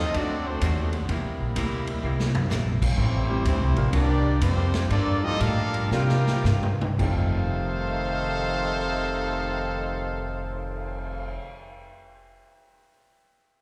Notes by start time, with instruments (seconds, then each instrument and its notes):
Already playing: upright bass D#2, trombone section C3 F3 A3 C4 D#4, trumpet section C4 F4 A4 D#5
0.14 upright bass D2, hollow-body jazz guitar D3 A3 C4 F#4, trombone section F#3 A3 D4, trumpet section C4 F#4 A4 D5, kick, ride
0.47 trombone section F#3 A3 C4, trumpet section A3 D4 F#4 C5
0.61 upright bass D#2, hollow-body jazz guitar D3 A3 C4 F#4, kick, hi-hat pedal, ride
0.93 ride
1.08 upright bass E2, hollow-body jazz guitar C3 G3 A#3 E4, trombone section G3 A#3 E4, kick, ride
1.25 upright bass C2
1.40 upright bass A#1
1.55 upright bass D2, hollow-body jazz guitar C3 G3 A#3 E4, kick, hi-hat pedal, ride
1.87 ride
2.03 upright bass C2, hollow-body jazz guitar C3 G3 A#3 E4
2.20 snare
2.34 muted upright bass stroke, floor tom
2.49 upright bass A#1, hollow-body jazz guitar C3 G3 A#3 E4, snare, hi-hat pedal
2.82 kick, crash
2.97 upright bass A1, hollow-body jazz guitar A2 G3 C4 E4, trombone section E3 G3 C4, trumpet section A3 E4 G4 C5, kick
3.29 grand piano G3 A3 C4 E4 G4
3.45 upright bass D2, hollow-body jazz guitar A2 G3 C4 E4, kick, hi-hat pedal, ride
3.61 upright bass C2
3.76 upright bass A1, grand piano F3 A#3 C4 D4 A#4, ride
3.91 upright bass C2, hollow-body jazz guitar C3 G3 A#3 F4, trombone section G3 A#3 D4, trumpet section C4 G4 A#4 D5, kick, ride
4.40 upright bass F2, hollow-body jazz guitar C3 G3 A#3 F4, trombone section F3 G3 C4, trumpet section A#3 F4 G4 C5, kick, hi-hat pedal, ride
4.74 snare, ride
4.89 upright bass G2, trombone section F3 A#3 D4, hollow-body jazz guitar G3 A#3 F4 A4, trumpet section A#3 F4 A4 D5, kick, ride
5.23 grand piano F3 G3 D4 F4 G4, trumpet section C4 F4 A4 D#5, trombone section D#4
5.39 upright bass A2, hollow-body jazz guitar G3 A#3 F4 A4, trombone section G3 D4 F4, trumpet section D4 A4 A#4 F5, kick, hi-hat pedal, ride
5.74 ride
5.91 hollow-body jazz guitar C3 G3 A#3 F4, upright bass C3, grand piano G3 C4 D4 F4 A#4, trombone section G3 A#3 F4, trumpet section C4 G4 A#4 F5, snare
6.09 snare
6.27 snare
6.44 upright bass G2, hollow-body jazz guitar C3 G3 A#3 F4, snare, hi-hat pedal
6.63 mid tom
6.81 mid tom
6.97 upright bass F1, hollow-body jazz guitar F2 D#3, grand piano F2 F3 G3 D#4 A4 D5, trombone section F2 C3 D#3 A3, trumpet section D#4 A4 C5 F5, kick, crash
7.02 hollow-body jazz guitar A3
7.36 cymbal swell